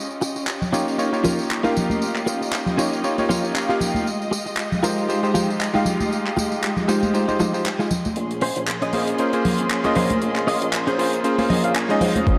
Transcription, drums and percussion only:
0.11 tambourine soft
0.11 cabasa soft
0.21 tambourine medium
0.21 cabasa medium
0.36 tambourine soft
0.36 cabasa soft
0.47 clap medium
0.47 tambourine soft
0.47 cabasa soft
0.62 tambourine soft
0.62 low conga medium
0.73 tambourine medium
0.73 muted conga soft
0.73 cabasa medium
0.88 tambourine soft
0.88 cabasa soft
0.99 tambourine soft
0.99 cabasa soft
1.13 tambourine soft
1.13 cabasa soft
1.24 tambourine medium
1.24 low conga medium
1.24 cabasa medium
1.39 tambourine soft
1.39 cabasa soft
1.50 clap loud
1.50 tambourine soft
1.50 cabasa soft
1.64 tambourine soft
1.64 muted conga medium
1.64 cabasa soft
1.76 tambourine medium
1.76 low conga medium
1.76 cabasa medium
1.90 tambourine soft
1.90 high conga medium
1.90 cabasa soft
2.02 tambourine soft
2.02 cabasa soft
2.16 clap soft
2.16 tambourine soft
2.16 cabasa soft
2.27 tambourine medium
2.27 cabasa medium
2.41 tambourine soft
2.41 cabasa soft
2.52 clap loud
2.52 tambourine soft
2.52 cabasa soft
2.66 tambourine soft
2.66 low conga medium
2.78 tambourine medium
2.78 muted conga soft
2.78 cabasa medium
2.92 tambourine soft
2.92 cabasa soft
3.03 tambourine soft
3.03 cabasa soft
3.18 tambourine soft
3.18 muted conga medium
3.18 cabasa soft
3.29 tambourine medium
3.29 low conga medium
3.29 cabasa medium
3.44 tambourine soft
3.44 cabasa soft
3.55 clap loud
3.55 tambourine soft
3.55 cabasa soft
3.70 tambourine soft
3.70 cabasa soft
3.81 tambourine medium
3.81 low conga medium
3.81 cabasa medium
3.95 tambourine soft
3.95 high conga medium
3.95 cabasa soft
4.06 tambourine soft
4.06 cabasa medium
4.21 tambourine soft
4.21 cabasa soft
4.33 tambourine medium
4.33 cabasa medium
4.46 tambourine soft
4.46 cabasa soft
4.57 clap loud
4.57 tambourine soft
4.57 cabasa soft
4.72 tambourine soft
4.72 low conga medium
4.83 tambourine medium
4.83 muted conga soft
4.83 cabasa medium
4.98 tambourine soft
4.98 cabasa soft
5.09 tambourine soft
5.09 cabasa soft
5.23 tambourine soft
5.23 cabasa soft
5.35 tambourine medium
5.35 low conga medium
5.35 cabasa medium
5.49 tambourine soft
5.49 cabasa soft
5.60 clap loud
5.60 tambourine soft
5.60 cabasa soft
5.74 tambourine soft
5.74 muted conga medium
5.74 cabasa soft
5.85 tambourine medium
5.85 low conga medium
5.85 cabasa medium
6.00 tambourine soft
6.00 high conga medium
6.00 cabasa soft
6.12 tambourine soft
6.12 cabasa soft
6.26 clap soft
6.26 tambourine soft
6.26 cabasa soft
6.37 tambourine medium
6.37 high conga medium
6.37 cabasa medium
6.51 tambourine soft
6.51 cabasa soft
6.63 clap loud
6.63 tambourine soft
6.63 cabasa medium
6.77 tambourine soft
6.77 low conga medium
6.77 cabasa soft
6.88 tambourine medium
6.88 muted conga soft
6.88 cabasa medium
7.03 tambourine soft
7.03 high conga medium
7.03 cabasa soft
7.14 tambourine soft
7.14 cabasa medium
7.28 tambourine soft
7.28 muted conga medium
7.28 cabasa soft
7.39 tambourine medium
7.39 high conga medium
7.39 low conga medium
7.39 cabasa medium
7.54 tambourine soft
7.54 cabasa soft
7.65 clap loud
7.65 tambourine soft
7.65 cabasa soft
7.80 tambourine soft
7.80 cabasa soft
7.91 tambourine medium
7.91 low conga medium
7.91 cabasa medium
8.05 tambourine soft
8.05 high conga medium
8.05 cabasa soft
8.16 closed hi-hat medium
8.31 closed hi-hat soft
8.41 open hi-hat loud
8.56 closed hi-hat medium
8.67 clap loud
8.67 closed hi-hat medium
8.82 closed hi-hat soft
8.93 open hi-hat loud
8.93 muted conga soft
9.07 closed hi-hat medium
9.18 closed hi-hat medium
9.33 closed hi-hat soft
9.45 open hi-hat loud
9.45 low conga loud
9.58 closed hi-hat medium
9.70 clap loud
9.70 closed hi-hat medium
9.84 closed hi-hat soft
9.84 muted conga medium
9.95 open hi-hat loud
9.95 low conga medium
10.10 closed hi-hat medium
10.10 high conga medium
10.22 closed hi-hat medium
10.36 clap soft
10.36 closed hi-hat soft
10.48 open hi-hat loud
10.62 closed hi-hat medium
10.73 clap loud
10.73 closed hi-hat medium
10.87 closed hi-hat soft
10.99 open hi-hat loud
11.13 closed hi-hat medium
11.24 closed hi-hat medium
11.38 open hi-hat medium
11.38 muted conga medium
11.50 open hi-hat loud
11.50 low conga loud
11.64 closed hi-hat medium
11.75 clap loud
11.75 closed hi-hat medium
11.90 closed hi-hat soft
12.01 open hi-hat loud
12.01 low conga medium
12.16 closed hi-hat medium
12.16 high conga loud
12.27 kick loud
12.27 closed hi-hat medium

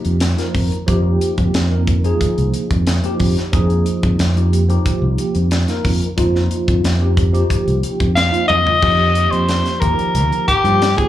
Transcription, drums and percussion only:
0.05 closed hi-hat soft
0.20 snare loud
0.20 closed hi-hat medium
0.38 snare soft
0.38 closed hi-hat soft
0.55 kick medium
0.55 open hi-hat medium
0.72 closed hi-hat soft
0.88 kick loud
0.88 closed hi-hat medium
1.21 closed hi-hat medium
1.38 kick medium
1.38 closed hi-hat soft
1.54 snare loud
1.54 closed hi-hat medium
1.87 kick medium
1.87 closed hi-hat medium
2.04 closed hi-hat soft
2.21 kick medium
2.21 closed hi-hat medium
2.38 closed hi-hat soft
2.54 closed hi-hat medium
2.71 kick medium
2.71 closed hi-hat soft
2.87 snare loud
2.87 closed hi-hat medium
3.04 closed hi-hat soft
3.20 kick medium
3.20 open hi-hat medium
3.37 snare soft
3.37 closed hi-hat soft
3.53 kick loud
3.53 closed hi-hat medium
3.70 closed hi-hat soft
3.86 closed hi-hat medium
4.03 kick medium
4.03 closed hi-hat soft
4.19 snare loud
4.19 closed hi-hat medium
4.37 closed hi-hat soft
4.53 closed hi-hat medium
4.70 closed hi-hat soft
4.86 kick medium
4.86 closed hi-hat medium
5.18 closed hi-hat medium
5.35 closed hi-hat soft
5.51 snare medium
5.51 closed hi-hat medium
5.68 snare soft
5.68 closed hi-hat soft
5.85 kick medium
5.85 open hi-hat medium
6.02 closed hi-hat soft
6.18 kick loud
6.18 closed hi-hat medium
6.36 snare soft
6.51 closed hi-hat medium
6.68 kick medium
6.68 closed hi-hat soft
6.84 snare medium
6.84 closed hi-hat medium
7.17 kick medium
7.17 closed hi-hat medium
7.35 closed hi-hat soft
7.50 kick medium
7.50 closed hi-hat medium
7.68 closed hi-hat soft
7.83 closed hi-hat medium
8.00 kick medium
8.00 closed hi-hat soft
8.17 snare loud
8.17 closed hi-hat medium
8.34 closed hi-hat soft
8.50 high tom medium
8.67 floor tom medium
8.82 kick medium
8.82 crash medium
9.15 closed hi-hat medium
9.33 closed hi-hat soft
9.49 snare medium
9.49 closed hi-hat medium
9.66 snare soft
9.66 closed hi-hat soft
9.82 kick medium
9.82 closed hi-hat medium
9.99 closed hi-hat soft
10.15 closed hi-hat medium
10.32 closed hi-hat soft
10.48 kick medium
10.48 closed hi-hat medium
10.65 closed hi-hat soft
10.82 snare loud
10.82 closed hi-hat medium
10.98 kick medium
10.98 closed hi-hat soft

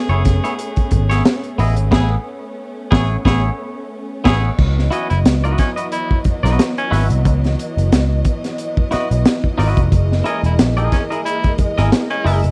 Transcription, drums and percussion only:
0.25 kick loud
0.25 snare soft
0.25 closed hi-hat medium
0.45 closed hi-hat medium
0.59 closed hi-hat medium
0.76 kick medium
0.76 closed hi-hat soft
0.91 kick medium
0.91 closed hi-hat medium
1.11 snare soft
1.11 closed hi-hat medium
1.25 snare loud
1.25 closed hi-hat medium
1.44 closed hi-hat soft
1.59 open hi-hat medium
1.77 closed hi-hat medium
1.92 kick loud
1.92 snare loud
1.92 crash medium
2.92 kick loud
2.92 snare loud
3.25 kick loud
3.25 snare loud
4.25 kick loud
4.25 snare loud
4.25 crash medium
4.59 kick loud
4.59 crash medium
4.79 snare soft
4.92 closed hi-hat medium
5.10 closed hi-hat soft
5.25 snare loud
5.25 closed hi-hat loud
5.44 closed hi-hat soft
5.58 kick loud
5.58 snare soft
5.58 closed hi-hat medium
5.77 closed hi-hat medium
5.92 closed hi-hat medium
6.11 kick medium
6.24 kick medium
6.24 closed hi-hat medium
6.45 snare soft
6.45 closed hi-hat medium
6.59 snare medium
6.59 closed hi-hat medium
6.77 closed hi-hat soft
6.93 snare soft
6.93 open hi-hat medium
7.10 closed hi-hat medium
7.25 kick loud
7.25 closed hi-hat medium
7.44 snare soft
7.44 closed hi-hat soft
7.59 closed hi-hat medium
7.78 closed hi-hat medium
7.92 snare loud
7.92 closed hi-hat loud
8.25 kick medium
8.25 closed hi-hat medium
8.44 snare soft
8.44 closed hi-hat medium
8.58 closed hi-hat medium
8.77 kick medium
8.92 snare soft
8.92 closed hi-hat medium
9.11 closed hi-hat medium
9.25 snare loud
9.25 closed hi-hat medium
9.44 kick medium
9.59 snare soft
9.59 open hi-hat medium
9.77 kick medium
9.77 closed hi-hat medium
9.92 kick loud
9.92 closed hi-hat medium
10.12 snare soft
10.25 closed hi-hat medium
10.44 closed hi-hat soft
10.59 snare loud
10.59 closed hi-hat loud
10.78 closed hi-hat soft
10.92 kick medium
10.92 snare soft
10.92 closed hi-hat medium
11.12 closed hi-hat soft
11.26 closed hi-hat medium
11.44 kick medium
11.44 closed hi-hat soft
11.58 kick medium
11.58 closed hi-hat medium
11.78 snare soft
11.78 closed hi-hat medium
11.92 snare loud
11.92 closed hi-hat medium
12.10 closed hi-hat soft
12.26 open hi-hat medium
12.44 closed hi-hat medium

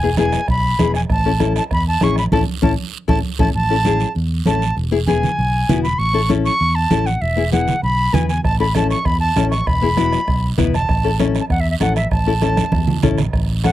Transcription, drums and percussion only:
0.17 bombo rim medium
0.17 high conga medium
0.17 short guiro medium
0.32 bombo rim medium
0.32 short guiro medium
0.48 bombo low medium
0.48 bombo rim medium
0.48 high conga soft
0.48 long guiro medium
0.79 bombo rim medium
0.79 high conga medium
0.79 short guiro medium
0.94 bombo rim medium
0.94 short guiro medium
1.10 bombo low medium
1.10 bombo rim medium
1.10 high conga soft
1.10 long guiro medium
1.40 bombo rim medium
1.40 high conga medium
1.40 short guiro medium
1.56 bombo rim medium
1.56 short guiro medium
1.71 bombo low medium
1.71 bombo rim medium
1.71 high conga soft
1.71 long guiro medium
2.01 bombo rim medium
2.01 high conga medium
2.01 short guiro medium
2.16 bombo rim medium
2.16 short guiro medium
2.32 bombo low medium
2.32 high conga medium
2.32 long guiro loud
2.63 bombo low loud
2.63 high conga medium
2.63 long guiro loud
3.09 bombo low medium
3.09 high conga medium
3.09 long guiro medium
3.39 bombo low medium
3.39 high conga medium
3.39 long guiro medium
3.54 high conga soft
3.54 long guiro medium
3.85 high conga medium
3.85 short guiro medium
4.00 short guiro medium
4.15 high conga soft
4.15 long guiro medium
4.46 high conga medium
4.46 short guiro medium
4.62 short guiro medium
4.77 high conga soft
4.77 long guiro medium
5.08 high conga medium
5.08 short guiro medium
5.23 low conga medium
5.23 short guiro medium
5.39 high conga soft
5.39 long guiro medium
5.69 high conga medium
5.69 low conga medium
5.69 short guiro medium
5.85 short guiro medium
6.00 high conga soft
6.00 long guiro medium
6.30 high conga medium
6.30 short guiro medium
6.46 short guiro medium
6.60 high conga soft
6.60 long guiro medium
6.91 high conga medium
6.91 short guiro medium
7.07 short guiro medium
7.22 high conga soft
7.22 long guiro medium
7.53 high conga medium
7.53 short guiro medium
7.68 low conga medium
7.68 short guiro medium
7.84 high conga soft
7.84 long guiro medium
8.14 high conga medium
8.14 low conga medium
8.14 short guiro medium
8.29 short guiro medium
8.44 bombo low medium
8.44 bombo rim medium
8.44 high conga soft
8.44 long guiro medium
8.75 bombo rim medium
8.75 high conga medium
8.75 short guiro medium
8.90 bombo rim medium
8.90 short guiro medium
9.05 bombo low medium
9.05 bombo rim medium
9.05 high conga soft
9.05 long guiro medium
9.36 bombo rim medium
9.36 high conga medium
9.36 short guiro medium
9.52 bombo rim medium
9.52 short guiro medium
9.67 bombo low medium
9.67 bombo rim medium
9.67 high conga soft
9.67 long guiro medium
9.97 bombo rim medium
9.97 high conga medium
9.97 short guiro medium
10.12 bombo rim medium
10.12 short guiro medium
10.27 bombo low medium
10.27 bombo rim medium
10.27 high conga soft
10.27 long guiro medium
10.58 bombo low medium
10.58 bombo rim medium
10.58 high conga medium
10.58 low conga medium
10.58 short guiro medium
10.74 bombo rim medium
10.74 short guiro medium
10.89 bombo low medium
10.89 bombo rim medium
10.89 high conga soft
10.89 long guiro medium
11.19 bombo rim medium
11.19 high conga medium
11.19 short guiro medium
11.35 bombo rim medium
11.35 short guiro medium
11.50 bombo low medium
11.50 bombo rim medium
11.50 high conga soft
11.50 long guiro medium
11.81 bombo rim medium
11.81 high conga medium
11.81 short guiro medium
11.96 bombo rim medium
11.96 short guiro medium
12.11 bombo low medium
12.11 bombo rim medium
12.11 high conga soft
12.11 long guiro medium
12.42 bombo rim medium
12.42 high conga medium
12.42 short guiro medium
12.57 bombo rim medium
12.57 high conga medium
12.57 short guiro medium
12.72 bombo low medium
12.72 bombo rim medium
12.72 high conga loud
12.72 long guiro medium
12.88 low conga medium
13.03 bombo low medium
13.03 bombo rim medium
13.03 low conga loud
13.03 short guiro medium
13.18 bombo rim medium
13.18 low conga medium
13.18 short guiro medium
13.33 bombo low medium
13.33 bombo rim medium
13.33 high conga soft
13.33 long guiro medium
13.64 bombo rim medium
13.64 high conga medium
13.64 short guiro medium

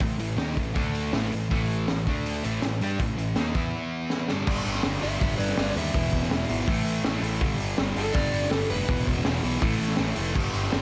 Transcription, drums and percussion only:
0.01 kick loud
0.20 open hi-hat medium
0.38 snare loud
0.38 open hi-hat medium
0.47 snare soft
0.57 kick medium
0.57 open hi-hat medium
0.76 kick loud
0.76 open hi-hat medium
0.95 open hi-hat medium
1.13 snare loud
1.13 open hi-hat medium
1.32 open hi-hat medium
1.51 kick loud
1.51 open hi-hat medium
1.71 open hi-hat medium
1.88 snare loud
1.88 open hi-hat medium
2.07 kick loud
2.07 open hi-hat medium
2.26 open hi-hat medium
2.45 open hi-hat medium
2.62 snare loud
2.62 open hi-hat medium
2.81 open hi-hat medium
3.00 kick loud
3.00 open hi-hat medium
3.19 open hi-hat medium
3.36 snare loud
3.36 open hi-hat medium
3.46 snare soft
3.55 kick loud
3.55 open hi-hat medium
4.10 snare medium
4.29 snare medium
4.47 kick loud
4.47 crash loud
4.66 open hi-hat medium
4.75 snare soft
4.83 snare loud
4.83 open hi-hat medium
5.03 open hi-hat medium
5.21 kick loud
5.21 open hi-hat medium
5.40 open hi-hat medium
5.49 snare soft
5.58 snare loud
5.58 open hi-hat loud
5.77 open hi-hat medium
5.94 kick loud
5.94 open hi-hat loud
6.12 kick medium
6.12 open hi-hat medium
6.23 snare soft
6.31 snare loud
6.31 open hi-hat medium
6.49 open hi-hat medium
6.68 kick loud
6.68 open hi-hat loud
6.86 open hi-hat medium
7.05 snare loud
7.05 open hi-hat medium
7.23 open hi-hat medium
7.41 kick loud
7.41 open hi-hat medium
7.60 open hi-hat medium
7.78 snare loud
7.78 open hi-hat medium
7.96 open hi-hat medium
8.14 kick loud
8.14 open hi-hat medium
8.34 open hi-hat medium
8.42 snare soft
8.51 snare loud
8.51 open hi-hat medium
8.70 open hi-hat medium
8.89 kick loud
8.89 open hi-hat loud
9.07 kick medium
9.07 open hi-hat medium
9.16 snare soft
9.25 snare loud
9.25 open hi-hat medium
9.44 open hi-hat medium
9.62 kick loud
9.62 open hi-hat medium
9.80 open hi-hat medium
9.88 snare soft
9.97 snare loud
9.97 open hi-hat medium
10.16 open hi-hat medium
10.35 kick loud
10.35 crash loud
10.54 open hi-hat medium
10.63 snare soft
10.73 snare loud
10.73 open hi-hat medium

